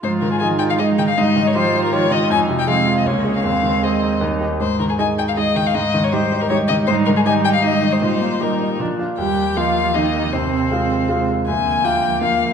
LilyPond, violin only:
\new Staff \with { instrumentName = "Violin" } { \time 3/4 \key aes \major \tempo 4 = 158 c''8 bes'16 aes'16 aes''8 g''16 f''16 ees''8 g''16 f''16 | ees''8. des''16 c''8. bes'16 des''8 ees''8 | aes''8. g''16 f''8. ees''16 des''8. f''16 | f''4 ees''4 r4 |
c''8 bes'16 aes'16 aes''8 g''16 f''16 ees''8 g''16 f''16 | ees''8. des''16 c''8. bes'16 des''8 ees''8 | \key ees \major c''8 bes'16 aes'16 aes''8 g''16 f''16 ees''8. c''16 | c''4 bes'4 r4 |
g''4 f''4 ees''4 | c''2~ c''8 r8 | aes''4 g''4 f''4 | }